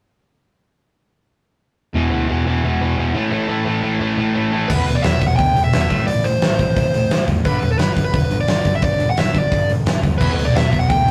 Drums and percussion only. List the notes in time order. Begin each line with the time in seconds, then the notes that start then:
4.70 kick, crash
4.87 open hi-hat
5.04 snare, open hi-hat
5.22 kick, open hi-hat
5.39 kick, open hi-hat
5.57 open hi-hat
5.73 snare, open hi-hat
5.90 kick, open hi-hat
6.08 open hi-hat
6.24 open hi-hat
6.42 snare, open hi-hat
6.59 kick, open hi-hat
6.77 kick, open hi-hat
6.94 open hi-hat
7.11 snare, open hi-hat
7.28 kick, open hi-hat
7.45 kick, open hi-hat
7.62 open hi-hat
7.79 snare, open hi-hat
7.97 kick, open hi-hat
8.14 kick, open hi-hat
8.31 open hi-hat
8.48 snare, open hi-hat
8.65 kick, open hi-hat
8.82 kick, open hi-hat
9.00 open hi-hat
9.17 snare, open hi-hat
9.35 kick, open hi-hat
9.52 kick, open hi-hat
9.70 open hi-hat
9.86 snare, open hi-hat
10.03 kick, open hi-hat
10.21 kick, crash
10.39 open hi-hat
10.56 snare, open hi-hat
10.73 kick, open hi-hat
10.90 kick, open hi-hat